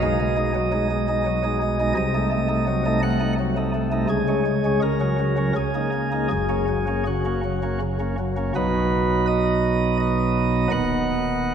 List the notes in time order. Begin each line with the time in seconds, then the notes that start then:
Already playing: B1 B2 D#5
0.03 G#3 D#4
0.20 G#3
0.37 G#3 D#4
0.55 F#3
0.72 G#3 D#4
0.91 G#3
1.09 G#3 D#4
1.26 F#3
1.44 G#3 D#4
1.62 G#3
1.80 G#3 D#4
1.96 C2 C3 D#5
2.15 A3 D#4
2.32 A3
2.49 A3 D#4
2.68 F#3
2.86 A3 D#4
3.02 A3 F#5
3.20 A3 D#4
3.39 F#3
3.57 A3 D#4
3.74 A3
3.92 A3 D#4
4.09 C#2 C#3 G#4
4.28 G#3 C#4
4.46 G#3
4.65 G#3 C#4
4.82 C#2 C#3 A#4
5.00 F#3 C#4
5.19 F#3
5.37 F#3 C#4
5.56 C#2 C#3 G#4
5.74 A#3 D#4
5.93 A#3
6.12 A#3 D#4
6.30 F#1 F#2 G#4
6.49 A#3 C#4
6.69 F#3
6.87 A#3 C#4
7.07 C#3 F#4
7.25 A#3 C#4
7.44 F#3
7.63 A#3 C#4
7.81 C#3
8.00 A#3 C#4
8.19 F#3
8.37 A#3 C#4
8.55 B1 B2 F#3 B3 D#4 B4
9.27 D#5
10.00 D#5
10.71 D#1 D#2 D#3 B3 D#4 F#5